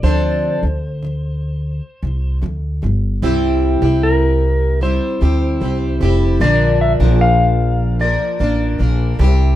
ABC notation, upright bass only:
X:1
M:4/4
L:1/16
Q:1/4=75
K:Cmix
V:1 name="Upright bass" clef=bass
D,,3 D,,6 z C,,2 D,,2 G,,,2 | C,,3 C,,6 z D,,2 C,,2 F,,,2 | B,,,3 B,,,6 z A,,,2 B,,,2 C,,2 |]